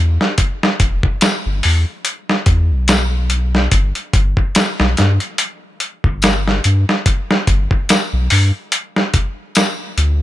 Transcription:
0.00 sub bass E2
0.21 snare
0.38 kick, closed hi-hat
0.63 snare
0.80 sub bass E1, kick, closed hi-hat
1.03 kick
1.21 snare, closed hi-hat, tambourine
1.46 sub bass G1
1.63 sub bass E2, open hi-hat
2.05 closed hi-hat
2.29 snare
2.46 sub bass E2, kick, closed hi-hat
2.71 sub bass B1
2.88 snare, closed hi-hat, tambourine
3.30 closed hi-hat
3.55 snare
3.72 sub bass G1, kick, closed hi-hat
3.95 closed hi-hat
4.13 sub bass G1, kick, closed hi-hat
4.37 kick
4.55 snare, closed hi-hat, tambourine
4.80 sub bass B1, snare
4.97 sub bass G2, snare, closed hi-hat
5.20 closed hi-hat
5.38 closed hi-hat
5.80 closed hi-hat
6.04 sub bass G1, kick
6.22 snare, closed hi-hat, tambourine
6.48 snare
6.64 sub bass G2, closed hi-hat
6.89 snare
7.06 kick, closed hi-hat
7.31 snare
7.47 sub bass G1, kick, closed hi-hat
7.71 kick
7.89 snare, closed hi-hat, tambourine
8.13 sub bass B1
8.30 sub bass G2, open hi-hat
8.72 closed hi-hat
8.96 snare
9.14 kick, closed hi-hat
9.55 snare, closed hi-hat, tambourine
9.98 sub bass D2, closed hi-hat

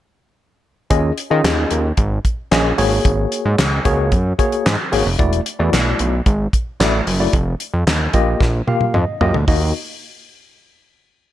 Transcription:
0.90 analog synth bass D#2, tine electric piano C#4 F4 G#4 D#5, kick, closed hi-hat
1.18 closed hi-hat
1.30 analog synth bass D#3, tine electric piano C#4 F4 G#4 D#5
1.44 analog synth bass D#2, snare, clap, closed hi-hat
1.71 analog synth bass D#2, closed hi-hat
1.97 analog synth bass G#1, kick, closed hi-hat
2.25 kick, closed hi-hat
2.51 analog synth bass A#1, tine electric piano C#4 F4 G#4 D#5, snare, clap, closed hi-hat
2.78 analog synth bass G#1, tine electric piano A#3 F#4 G#4 C#5, open hi-hat
3.05 analog synth bass G#1, kick, closed hi-hat
3.32 closed hi-hat
3.45 analog synth bass G#2
3.58 analog synth bass C#2, snare, clap, closed hi-hat
3.85 analog synth bass C#2, tine electric piano A#3 F#4 G#4 C#5, kick, closed hi-hat
4.12 analog synth bass F#2, kick, closed hi-hat
4.38 tine electric piano A#3 F#4 G#4 C#5, kick, closed hi-hat
4.52 closed hi-hat
4.66 analog synth bass G#2, snare, clap, closed hi-hat
4.92 analog synth bass G#1, tine electric piano A#3 F#4 G#4 C#5, open hi-hat
5.06 analog synth bass F1
5.18 analog synth bass E1, tine electric piano A3 E4 F#4 D5, kick, closed hi-hat
5.33 closed hi-hat
5.46 closed hi-hat
5.59 analog synth bass E2, tine electric piano A3 E4 F#4 D5
5.73 analog synth bass B1, snare, clap, closed hi-hat
5.99 analog synth bass B1, closed hi-hat
6.26 analog synth bass G#1, kick, closed hi-hat
6.53 kick, closed hi-hat
6.80 analog synth bass A1, tine electric piano A3 E4 F#4 D5, snare, clap, closed hi-hat
7.07 analog synth bass F#1, open hi-hat
7.20 tine electric piano A3 E4 F#4 D5
7.33 analog synth bass F1, kick, closed hi-hat
7.60 closed hi-hat
7.74 analog synth bass F2
7.87 analog synth bass D#2, snare, clap, closed hi-hat
8.13 analog synth bass A#1, tine electric piano A#3 F4 G4 D#5, kick, closed hi-hat
8.40 analog synth bass A#1, kick, snare
8.67 tine electric piano A#3 F4 G4 F5, high tom
8.81 high tom
8.94 analog synth bass F2, tine electric piano D#5, mid tom
9.21 analog synth bass F#2, tine electric piano A#3 F4 G4 D#5, floor tom
9.34 analog synth bass D2, floor tom
9.48 analog synth bass D#2, tine electric piano A#3 D#4 F#4 D#5, kick, open hi-hat

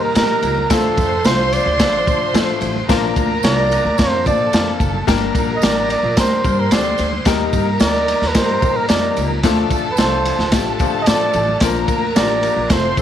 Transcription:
Already playing: violin section A#4 A#5
0.04 flugelhorn A#4
0.15 upright bass A#2, grand piano G3 A#3 D#4 G4 A4, flugelhorn A#4, snare, ride, tambourine, high conga
0.22 grand piano A#4
0.42 upright bass C#2, ride, tambourine
0.58 high conga
0.70 upright bass D2, grand piano F3 A3 D4 F4 A4, flugelhorn A4, violin section C5 C6, kick, snare, ride, tambourine, muted conga
0.97 upright bass F2, kick, ride, tambourine, muted conga
1.24 upright bass C2, grand piano F3 A3 D4 F4 A4, flugelhorn C5, snare, ride, tambourine, high conga
1.53 flugelhorn D5, ride, tambourine, muted conga
1.66 upright bass D2
1.79 upright bass A1, grand piano F3 A3 D4 F4 A4, kick, snare, ride, tambourine
2.07 upright bass D3, grand piano F3 A3 D4 F4 C5, kick, ride, tambourine
2.34 upright bass A2, grand piano F3 A3 D4 F4 A4, snare, ride, tambourine, high conga
2.61 upright bass A1, ride, tambourine
2.76 high conga
2.89 upright bass A#1, grand piano F3 A#3 D4 F4 A#4, violin section A#4 A#5, kick, snare, ride, tambourine, muted conga
3.16 upright bass D2, kick, ride, tambourine, muted conga
3.43 upright bass C2, grand piano F3 A#3 D4 F4 A#4, flugelhorn D5, snare, ride, tambourine, high conga
3.71 ride, tambourine, muted conga
3.85 upright bass D2
3.98 upright bass F2, grand piano F3 A#3 D4 F4 A#4, flugelhorn C5, kick, snare, ride, tambourine
4.26 upright bass A#2, grand piano F3 A#3 D4 F4 C5, violin section A4 A5, flugelhorn D5, kick, ride, tambourine, muted conga, low conga
4.53 upright bass F2, grand piano F3 A#3 D4 F4 A#4, snare, ride, tambourine, high conga
4.80 upright bass F#1, kick, ride, tambourine
4.94 high conga
5.07 upright bass G1, grand piano G3 A#3 D4 G4 A#4, violin section A#4 A#5, kick, snare, ride, tambourine, muted conga
5.35 upright bass A#1, kick, ride, tambourine, muted conga
5.56 flugelhorn D#5
5.62 upright bass A1, grand piano G3 A#3 D4 G4 A#4, flugelhorn D5, snare, ride, tambourine, high conga
5.90 flugelhorn D5, ride, tambourine, muted conga
6.03 upright bass A#1
6.17 upright bass D2, grand piano G3 A#3 D4 G4 A#4, flugelhorn C5, kick, snare, ride, tambourine
6.44 upright bass G2, grand piano G3 A#3 D4 G4 A#4, violin section C5 C6, kick, ride, tambourine, muted conga
6.60 flugelhorn A#4
6.71 upright bass D2, grand piano G3 A#3 D4 G4 A4, flugelhorn D5, snare, ride, tambourine, high conga
6.98 upright bass D2, ride, tambourine
7.13 high conga
7.25 upright bass D#2, grand piano G3 A#3 D#4 G4 A#4, violin section A#4 A#5, kick, snare, ride, tambourine, muted conga
7.53 upright bass G2, kick, ride, tambourine, muted conga
7.80 upright bass D2, grand piano G3 A#3 D#4 G4 A#4, flugelhorn D5, snare, ride, tambourine, high conga
8.08 ride, tambourine, muted conga
8.22 upright bass D#2, snare
8.27 flugelhorn B4
8.34 upright bass G2, grand piano G3 A#3 D#4 G4 A#4, flugelhorn C5, kick, snare, ride, tambourine
8.62 upright bass A#2, grand piano G3 A#3 D#4 G4 C5, kick, ride, tambourine, muted conga, low conga
8.76 flugelhorn A#4
8.88 upright bass F2, grand piano G3 A#3 D#4 G4 A#4, flugelhorn D5, snare, ride, tambourine, high conga
9.16 upright bass C#2, ride, tambourine
9.31 high conga
9.43 upright bass D2, grand piano F3 A3 D4 F4 A4, violin section A4 A5, kick, snare, ride, tambourine, muted conga
9.70 upright bass F2, kick, ride, tambourine, muted conga
9.91 flugelhorn B4
9.97 upright bass C2, grand piano F3 A3 D4 D#4 A4, flugelhorn C5, snare, ride, tambourine, high conga
10.06 grand piano F4
10.25 ride, tambourine, muted conga
10.39 upright bass D2, snare
10.52 upright bass A1, grand piano F3 A3 D4 F4 G4, violin section A4 A5, kick, snare, ride, tambourine
10.79 upright bass D3, grand piano F3 A3 D4 F4 G4, kick, ride, tambourine
11.02 flugelhorn D#5
11.06 upright bass A2, grand piano F3 A3 D4 F4 A4, flugelhorn D5, snare, ride, tambourine, high conga
11.33 upright bass A1, ride, tambourine
11.48 high conga
11.60 upright bass A#1, grand piano F3 A#3 D4 F4 A#4, violin section A#4 A#5, kick, snare, ride, tambourine
11.88 upright bass D2, kick, ride, tambourine, muted conga
12.16 upright bass A1, grand piano F3 A#3 D4 F4 G4, flugelhorn D5, snare, ride, tambourine, high conga
12.43 ride, tambourine, muted conga
12.56 upright bass A#1
12.70 upright bass F1, grand piano F3 A3 C4 F4 A4, violin section C5 C6, flugelhorn C5, kick, snare, ride, tambourine
12.97 upright bass F2, grand piano F3 A3 C4 F4 A4, kick, ride, tambourine, muted conga, low conga

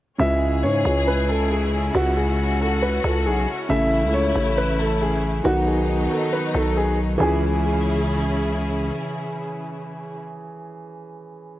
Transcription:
0.18 808-style bass C#2, grand piano C#3 G#3 E4 E5, string section C#3 C#4 E4 G#4
0.63 808-style bass G#2, grand piano C#5
0.85 808-style bass C#2
1.08 grand piano B4
1.29 grand piano A4
1.50 grand piano G#4
1.95 808-style bass C#2, grand piano F#4, string section F#4
2.16 grand piano G#4
2.61 grand piano A4
2.82 grand piano B4
3.04 808-style bass C#2, grand piano A4
3.26 808-style bass B1, grand piano G#4
3.69 808-style bass A1, grand piano C#3 A3 E4 E5, string section A3 E4
4.03 808-style bass C#2
4.14 grand piano C#5
4.36 808-style bass A1
4.57 grand piano B4
4.79 grand piano A4
5.01 grand piano G#4
5.44 808-style bass B1, grand piano D#3 B3 F#4, string section F#3 B3 D#4
5.67 grand piano G#4
6.11 grand piano A4
6.33 grand piano B4
6.54 808-style bass B1, grand piano A4
6.77 grand piano G#4
7.18 808-style bass C#2, string section C#3 C#4 E4 G#4, grand piano E3 C#4 G#4
7.23 grand piano G#4

